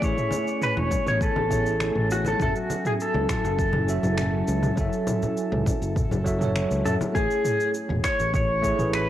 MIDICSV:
0, 0, Header, 1, 6, 480
1, 0, Start_track
1, 0, Key_signature, 3, "major"
1, 0, Tempo, 594059
1, 19, Time_signature, 4, 2, 24, 8
1, 7348, End_track
2, 0, Start_track
2, 0, Title_t, "Pedal steel guitar"
2, 0, Program_c, 0, 26
2, 33, Note_on_c, 0, 73, 112
2, 512, Note_on_c, 0, 71, 98
2, 520, Note_off_c, 0, 73, 0
2, 630, Note_off_c, 0, 71, 0
2, 633, Note_on_c, 0, 73, 82
2, 865, Note_off_c, 0, 73, 0
2, 875, Note_on_c, 0, 73, 93
2, 978, Note_off_c, 0, 73, 0
2, 989, Note_on_c, 0, 69, 96
2, 1710, Note_off_c, 0, 69, 0
2, 1713, Note_on_c, 0, 66, 83
2, 1831, Note_off_c, 0, 66, 0
2, 1840, Note_on_c, 0, 69, 80
2, 1948, Note_off_c, 0, 69, 0
2, 1958, Note_on_c, 0, 69, 103
2, 2073, Note_off_c, 0, 69, 0
2, 2078, Note_on_c, 0, 66, 73
2, 2313, Note_off_c, 0, 66, 0
2, 2316, Note_on_c, 0, 68, 89
2, 2357, Note_off_c, 0, 68, 0
2, 2439, Note_on_c, 0, 69, 96
2, 2661, Note_off_c, 0, 69, 0
2, 2671, Note_on_c, 0, 69, 90
2, 5272, Note_off_c, 0, 69, 0
2, 5539, Note_on_c, 0, 69, 104
2, 5603, Note_off_c, 0, 69, 0
2, 5776, Note_on_c, 0, 68, 109
2, 6225, Note_off_c, 0, 68, 0
2, 6501, Note_on_c, 0, 73, 104
2, 6740, Note_off_c, 0, 73, 0
2, 6749, Note_on_c, 0, 73, 113
2, 7226, Note_off_c, 0, 73, 0
2, 7229, Note_on_c, 0, 71, 98
2, 7348, Note_off_c, 0, 71, 0
2, 7348, End_track
3, 0, Start_track
3, 0, Title_t, "Tine electric piano"
3, 0, Program_c, 1, 4
3, 0, Control_c, 1, 64, 127
3, 0, Note_on_c, 1, 57, 80
3, 0, Note_on_c, 1, 64, 72
3, 0, Note_on_c, 1, 68, 71
3, 0, Note_on_c, 1, 73, 85
3, 3, Note_off_c, 1, 57, 0
3, 3, Note_on_c, 1, 57, 75
3, 17, Note_off_c, 1, 64, 0
3, 17, Note_on_c, 1, 64, 70
3, 32, Note_off_c, 1, 68, 0
3, 32, Note_on_c, 1, 68, 66
3, 44, Note_off_c, 1, 73, 0
3, 44, Note_on_c, 1, 73, 79
3, 1182, Note_off_c, 1, 57, 0
3, 1189, Note_off_c, 1, 64, 0
3, 1197, Note_off_c, 1, 68, 0
3, 1203, Note_off_c, 1, 73, 0
3, 1212, Note_on_c, 1, 57, 80
3, 1217, Note_on_c, 1, 64, 74
3, 1226, Note_on_c, 1, 68, 74
3, 1233, Note_on_c, 1, 73, 94
3, 1405, Note_off_c, 1, 57, 0
3, 1407, Note_off_c, 1, 64, 0
3, 1412, Note_off_c, 1, 68, 0
3, 1416, Note_off_c, 1, 73, 0
3, 1918, Note_on_c, 1, 54, 70
3, 1931, Note_on_c, 1, 66, 66
3, 1947, Note_on_c, 1, 69, 65
3, 1948, Control_c, 1, 64, 0
3, 1959, Note_on_c, 1, 76, 79
3, 2080, Control_c, 1, 64, 127
3, 3100, Note_off_c, 1, 54, 0
3, 3106, Note_off_c, 1, 66, 0
3, 3114, Note_off_c, 1, 69, 0
3, 3120, Note_off_c, 1, 76, 0
3, 3130, Note_on_c, 1, 54, 79
3, 3139, Note_on_c, 1, 66, 77
3, 3145, Note_on_c, 1, 69, 79
3, 3151, Note_on_c, 1, 76, 90
3, 3324, Note_off_c, 1, 54, 0
3, 3328, Note_off_c, 1, 66, 0
3, 3331, Note_off_c, 1, 69, 0
3, 3335, Note_off_c, 1, 76, 0
3, 3842, Note_on_c, 1, 54, 78
3, 3856, Note_on_c, 1, 66, 66
3, 3870, Note_on_c, 1, 69, 69
3, 3884, Note_on_c, 1, 76, 87
3, 5022, Note_off_c, 1, 54, 0
3, 5029, Note_off_c, 1, 66, 0
3, 5036, Note_off_c, 1, 69, 0
3, 5043, Note_off_c, 1, 76, 0
3, 5047, Note_on_c, 1, 54, 96
3, 5054, Note_on_c, 1, 66, 92
3, 5061, Note_on_c, 1, 69, 87
3, 5069, Note_on_c, 1, 76, 104
3, 5152, Note_off_c, 1, 54, 0
3, 5160, Note_off_c, 1, 66, 0
3, 5162, Note_on_c, 1, 54, 90
3, 5163, Note_off_c, 1, 69, 0
3, 5167, Note_off_c, 1, 76, 0
3, 5176, Note_on_c, 1, 66, 78
3, 5189, Note_on_c, 1, 69, 82
3, 5204, Note_on_c, 1, 73, 101
3, 5741, Note_off_c, 1, 54, 0
3, 5748, Note_off_c, 1, 66, 0
3, 5754, Note_off_c, 1, 69, 0
3, 5757, Note_on_c, 1, 57, 74
3, 5762, Note_off_c, 1, 73, 0
3, 5772, Note_on_c, 1, 64, 70
3, 5786, Note_on_c, 1, 68, 66
3, 5789, Control_c, 1, 64, 0
3, 5799, Note_on_c, 1, 73, 76
3, 5948, Control_c, 1, 64, 127
3, 6940, Note_off_c, 1, 57, 0
3, 6947, Note_off_c, 1, 64, 0
3, 6954, Note_off_c, 1, 68, 0
3, 6960, Note_off_c, 1, 73, 0
3, 6967, Note_on_c, 1, 57, 96
3, 6975, Note_on_c, 1, 64, 83
3, 6982, Note_on_c, 1, 68, 86
3, 6990, Note_on_c, 1, 73, 99
3, 7067, Note_off_c, 1, 57, 0
3, 7077, Note_on_c, 1, 57, 87
3, 7080, Note_off_c, 1, 64, 0
3, 7084, Note_off_c, 1, 68, 0
3, 7088, Note_off_c, 1, 73, 0
3, 7093, Note_on_c, 1, 64, 82
3, 7107, Note_on_c, 1, 68, 79
3, 7120, Note_on_c, 1, 71, 92
3, 7348, Note_off_c, 1, 57, 0
3, 7348, Note_off_c, 1, 64, 0
3, 7348, Note_off_c, 1, 68, 0
3, 7348, Note_off_c, 1, 71, 0
3, 7348, End_track
4, 0, Start_track
4, 0, Title_t, "Ambient pad"
4, 0, Program_c, 2, 92
4, 0, Note_on_c, 2, 61, 89
4, 0, Note_on_c, 2, 80, 83
4, 19, Note_on_c, 2, 59, 74
4, 1907, Note_off_c, 2, 80, 0
4, 1909, Note_off_c, 2, 61, 0
4, 1919, Note_off_c, 2, 59, 0
4, 1938, Note_on_c, 2, 64, 73
4, 1938, Note_on_c, 2, 69, 85
4, 1938, Note_on_c, 2, 80, 72
4, 1940, Note_on_c, 2, 54, 81
4, 1942, Note_on_c, 2, 61, 72
4, 5746, Note_off_c, 2, 64, 0
4, 5746, Note_off_c, 2, 69, 0
4, 5746, Note_off_c, 2, 80, 0
4, 5747, Note_off_c, 2, 54, 0
4, 5748, Note_off_c, 2, 61, 0
4, 7348, End_track
5, 0, Start_track
5, 0, Title_t, "Fingered electric bass"
5, 0, Program_c, 3, 33
5, 18, Note_on_c, 3, 33, 95
5, 108, Note_off_c, 3, 33, 0
5, 622, Note_on_c, 3, 28, 96
5, 708, Note_off_c, 3, 28, 0
5, 860, Note_on_c, 3, 33, 86
5, 1035, Note_off_c, 3, 33, 0
5, 1100, Note_on_c, 3, 33, 77
5, 1528, Note_off_c, 3, 33, 0
5, 1579, Note_on_c, 3, 33, 76
5, 1887, Note_off_c, 3, 33, 0
5, 1936, Note_on_c, 3, 30, 95
5, 2027, Note_off_c, 3, 30, 0
5, 2539, Note_on_c, 3, 37, 104
5, 2626, Note_off_c, 3, 37, 0
5, 2782, Note_on_c, 3, 30, 96
5, 3209, Note_off_c, 3, 30, 0
5, 3260, Note_on_c, 3, 30, 84
5, 3568, Note_off_c, 3, 30, 0
5, 3621, Note_on_c, 3, 37, 100
5, 3797, Note_off_c, 3, 37, 0
5, 3858, Note_on_c, 3, 30, 98
5, 3947, Note_off_c, 3, 30, 0
5, 4461, Note_on_c, 3, 37, 102
5, 4547, Note_off_c, 3, 37, 0
5, 4701, Note_on_c, 3, 30, 95
5, 4876, Note_off_c, 3, 30, 0
5, 4942, Note_on_c, 3, 30, 82
5, 5369, Note_off_c, 3, 30, 0
5, 5421, Note_on_c, 3, 37, 83
5, 5507, Note_off_c, 3, 37, 0
5, 5538, Note_on_c, 3, 42, 84
5, 5628, Note_off_c, 3, 42, 0
5, 5777, Note_on_c, 3, 33, 95
5, 5867, Note_off_c, 3, 33, 0
5, 6383, Note_on_c, 3, 28, 102
5, 6468, Note_off_c, 3, 28, 0
5, 6624, Note_on_c, 3, 33, 97
5, 7050, Note_off_c, 3, 33, 0
5, 7102, Note_on_c, 3, 33, 94
5, 7348, Note_off_c, 3, 33, 0
5, 7348, End_track
6, 0, Start_track
6, 0, Title_t, "Drums"
6, 16, Note_on_c, 9, 36, 107
6, 21, Note_on_c, 9, 69, 43
6, 97, Note_off_c, 9, 36, 0
6, 102, Note_off_c, 9, 69, 0
6, 142, Note_on_c, 9, 45, 74
6, 145, Note_on_c, 9, 69, 29
6, 223, Note_off_c, 9, 45, 0
6, 226, Note_off_c, 9, 69, 0
6, 249, Note_on_c, 9, 63, 89
6, 260, Note_on_c, 9, 69, 70
6, 330, Note_off_c, 9, 63, 0
6, 341, Note_off_c, 9, 69, 0
6, 384, Note_on_c, 9, 69, 28
6, 464, Note_off_c, 9, 69, 0
6, 499, Note_on_c, 9, 45, 75
6, 502, Note_on_c, 9, 69, 40
6, 580, Note_off_c, 9, 45, 0
6, 582, Note_off_c, 9, 69, 0
6, 622, Note_on_c, 9, 63, 68
6, 703, Note_off_c, 9, 63, 0
6, 737, Note_on_c, 9, 36, 98
6, 740, Note_on_c, 9, 69, 73
6, 741, Note_on_c, 9, 64, 68
6, 818, Note_off_c, 9, 36, 0
6, 821, Note_off_c, 9, 69, 0
6, 822, Note_off_c, 9, 64, 0
6, 863, Note_on_c, 9, 45, 73
6, 865, Note_on_c, 9, 69, 29
6, 943, Note_off_c, 9, 45, 0
6, 946, Note_off_c, 9, 69, 0
6, 977, Note_on_c, 9, 36, 113
6, 983, Note_on_c, 9, 69, 39
6, 1058, Note_off_c, 9, 36, 0
6, 1064, Note_off_c, 9, 69, 0
6, 1100, Note_on_c, 9, 63, 96
6, 1181, Note_off_c, 9, 63, 0
6, 1217, Note_on_c, 9, 36, 60
6, 1219, Note_on_c, 9, 45, 74
6, 1222, Note_on_c, 9, 69, 64
6, 1298, Note_off_c, 9, 36, 0
6, 1300, Note_off_c, 9, 45, 0
6, 1303, Note_off_c, 9, 69, 0
6, 1343, Note_on_c, 9, 69, 29
6, 1424, Note_off_c, 9, 69, 0
6, 1457, Note_on_c, 9, 26, 68
6, 1458, Note_on_c, 9, 63, 55
6, 1460, Note_on_c, 9, 69, 40
6, 1538, Note_off_c, 9, 26, 0
6, 1538, Note_off_c, 9, 63, 0
6, 1540, Note_off_c, 9, 69, 0
6, 1580, Note_on_c, 9, 45, 79
6, 1660, Note_off_c, 9, 45, 0
6, 1703, Note_on_c, 9, 69, 68
6, 1784, Note_off_c, 9, 69, 0
6, 1816, Note_on_c, 9, 63, 81
6, 1825, Note_on_c, 9, 69, 33
6, 1897, Note_off_c, 9, 63, 0
6, 1906, Note_off_c, 9, 69, 0
6, 1936, Note_on_c, 9, 36, 104
6, 1941, Note_on_c, 9, 45, 74
6, 1944, Note_on_c, 9, 69, 40
6, 2017, Note_off_c, 9, 36, 0
6, 2022, Note_off_c, 9, 45, 0
6, 2024, Note_off_c, 9, 69, 0
6, 2064, Note_on_c, 9, 69, 29
6, 2145, Note_off_c, 9, 69, 0
6, 2181, Note_on_c, 9, 63, 74
6, 2183, Note_on_c, 9, 69, 70
6, 2262, Note_off_c, 9, 63, 0
6, 2264, Note_off_c, 9, 69, 0
6, 2303, Note_on_c, 9, 45, 80
6, 2306, Note_on_c, 9, 69, 30
6, 2384, Note_off_c, 9, 45, 0
6, 2387, Note_off_c, 9, 69, 0
6, 2426, Note_on_c, 9, 69, 42
6, 2507, Note_off_c, 9, 69, 0
6, 2546, Note_on_c, 9, 63, 63
6, 2627, Note_off_c, 9, 63, 0
6, 2657, Note_on_c, 9, 36, 96
6, 2659, Note_on_c, 9, 26, 70
6, 2659, Note_on_c, 9, 45, 76
6, 2662, Note_on_c, 9, 69, 74
6, 2737, Note_off_c, 9, 36, 0
6, 2740, Note_off_c, 9, 26, 0
6, 2740, Note_off_c, 9, 45, 0
6, 2743, Note_off_c, 9, 69, 0
6, 2785, Note_on_c, 9, 69, 32
6, 2866, Note_off_c, 9, 69, 0
6, 2897, Note_on_c, 9, 36, 105
6, 2901, Note_on_c, 9, 69, 39
6, 2978, Note_off_c, 9, 36, 0
6, 2982, Note_off_c, 9, 69, 0
6, 3012, Note_on_c, 9, 63, 89
6, 3020, Note_on_c, 9, 45, 75
6, 3093, Note_off_c, 9, 63, 0
6, 3101, Note_off_c, 9, 45, 0
6, 3141, Note_on_c, 9, 69, 72
6, 3221, Note_off_c, 9, 69, 0
6, 3257, Note_on_c, 9, 64, 84
6, 3262, Note_on_c, 9, 69, 30
6, 3338, Note_off_c, 9, 64, 0
6, 3343, Note_off_c, 9, 69, 0
6, 3374, Note_on_c, 9, 26, 72
6, 3374, Note_on_c, 9, 45, 75
6, 3377, Note_on_c, 9, 63, 59
6, 3377, Note_on_c, 9, 69, 37
6, 3455, Note_off_c, 9, 26, 0
6, 3455, Note_off_c, 9, 45, 0
6, 3458, Note_off_c, 9, 63, 0
6, 3458, Note_off_c, 9, 69, 0
6, 3617, Note_on_c, 9, 69, 62
6, 3698, Note_off_c, 9, 69, 0
6, 3739, Note_on_c, 9, 45, 85
6, 3739, Note_on_c, 9, 63, 80
6, 3742, Note_on_c, 9, 69, 31
6, 3820, Note_off_c, 9, 45, 0
6, 3820, Note_off_c, 9, 63, 0
6, 3823, Note_off_c, 9, 69, 0
6, 3857, Note_on_c, 9, 36, 107
6, 3858, Note_on_c, 9, 69, 42
6, 3937, Note_off_c, 9, 36, 0
6, 3939, Note_off_c, 9, 69, 0
6, 3981, Note_on_c, 9, 69, 28
6, 4062, Note_off_c, 9, 69, 0
6, 4096, Note_on_c, 9, 63, 83
6, 4097, Note_on_c, 9, 45, 78
6, 4100, Note_on_c, 9, 69, 77
6, 4177, Note_off_c, 9, 63, 0
6, 4178, Note_off_c, 9, 45, 0
6, 4181, Note_off_c, 9, 69, 0
6, 4221, Note_on_c, 9, 69, 30
6, 4225, Note_on_c, 9, 64, 79
6, 4302, Note_off_c, 9, 69, 0
6, 4306, Note_off_c, 9, 64, 0
6, 4340, Note_on_c, 9, 69, 43
6, 4421, Note_off_c, 9, 69, 0
6, 4460, Note_on_c, 9, 63, 64
6, 4461, Note_on_c, 9, 45, 86
6, 4541, Note_off_c, 9, 63, 0
6, 4542, Note_off_c, 9, 45, 0
6, 4576, Note_on_c, 9, 36, 102
6, 4581, Note_on_c, 9, 69, 72
6, 4584, Note_on_c, 9, 64, 84
6, 4657, Note_off_c, 9, 36, 0
6, 4662, Note_off_c, 9, 69, 0
6, 4665, Note_off_c, 9, 64, 0
6, 4705, Note_on_c, 9, 69, 30
6, 4785, Note_off_c, 9, 69, 0
6, 4816, Note_on_c, 9, 36, 116
6, 4821, Note_on_c, 9, 45, 82
6, 4824, Note_on_c, 9, 69, 41
6, 4897, Note_off_c, 9, 36, 0
6, 4902, Note_off_c, 9, 45, 0
6, 4905, Note_off_c, 9, 69, 0
6, 4940, Note_on_c, 9, 63, 79
6, 4940, Note_on_c, 9, 64, 77
6, 4947, Note_on_c, 9, 69, 28
6, 5021, Note_off_c, 9, 63, 0
6, 5021, Note_off_c, 9, 64, 0
6, 5027, Note_off_c, 9, 69, 0
6, 5057, Note_on_c, 9, 36, 59
6, 5061, Note_on_c, 9, 69, 67
6, 5137, Note_off_c, 9, 36, 0
6, 5142, Note_off_c, 9, 69, 0
6, 5180, Note_on_c, 9, 45, 76
6, 5183, Note_on_c, 9, 69, 33
6, 5261, Note_off_c, 9, 45, 0
6, 5264, Note_off_c, 9, 69, 0
6, 5297, Note_on_c, 9, 26, 71
6, 5300, Note_on_c, 9, 69, 40
6, 5304, Note_on_c, 9, 63, 61
6, 5378, Note_off_c, 9, 26, 0
6, 5381, Note_off_c, 9, 69, 0
6, 5385, Note_off_c, 9, 63, 0
6, 5422, Note_on_c, 9, 69, 28
6, 5502, Note_off_c, 9, 69, 0
6, 5538, Note_on_c, 9, 45, 76
6, 5541, Note_on_c, 9, 69, 67
6, 5619, Note_off_c, 9, 45, 0
6, 5622, Note_off_c, 9, 69, 0
6, 5663, Note_on_c, 9, 63, 92
6, 5666, Note_on_c, 9, 69, 31
6, 5744, Note_off_c, 9, 63, 0
6, 5747, Note_off_c, 9, 69, 0
6, 5777, Note_on_c, 9, 36, 110
6, 5782, Note_on_c, 9, 69, 42
6, 5858, Note_off_c, 9, 36, 0
6, 5863, Note_off_c, 9, 69, 0
6, 5903, Note_on_c, 9, 69, 32
6, 5984, Note_off_c, 9, 69, 0
6, 6018, Note_on_c, 9, 45, 77
6, 6021, Note_on_c, 9, 69, 75
6, 6099, Note_off_c, 9, 45, 0
6, 6101, Note_off_c, 9, 69, 0
6, 6142, Note_on_c, 9, 69, 31
6, 6223, Note_off_c, 9, 69, 0
6, 6257, Note_on_c, 9, 69, 45
6, 6338, Note_off_c, 9, 69, 0
6, 6377, Note_on_c, 9, 45, 83
6, 6457, Note_off_c, 9, 45, 0
6, 6495, Note_on_c, 9, 26, 80
6, 6497, Note_on_c, 9, 36, 97
6, 6498, Note_on_c, 9, 69, 70
6, 6576, Note_off_c, 9, 26, 0
6, 6578, Note_off_c, 9, 36, 0
6, 6579, Note_off_c, 9, 69, 0
6, 6622, Note_on_c, 9, 69, 33
6, 6703, Note_off_c, 9, 69, 0
6, 6736, Note_on_c, 9, 36, 127
6, 6737, Note_on_c, 9, 45, 84
6, 6740, Note_on_c, 9, 69, 41
6, 6817, Note_off_c, 9, 36, 0
6, 6818, Note_off_c, 9, 45, 0
6, 6821, Note_off_c, 9, 69, 0
6, 6977, Note_on_c, 9, 36, 62
6, 6981, Note_on_c, 9, 69, 73
6, 7057, Note_off_c, 9, 36, 0
6, 7061, Note_off_c, 9, 69, 0
6, 7101, Note_on_c, 9, 45, 77
6, 7104, Note_on_c, 9, 69, 32
6, 7182, Note_off_c, 9, 45, 0
6, 7185, Note_off_c, 9, 69, 0
6, 7219, Note_on_c, 9, 26, 76
6, 7221, Note_on_c, 9, 69, 42
6, 7299, Note_off_c, 9, 26, 0
6, 7302, Note_off_c, 9, 69, 0
6, 7348, End_track
0, 0, End_of_file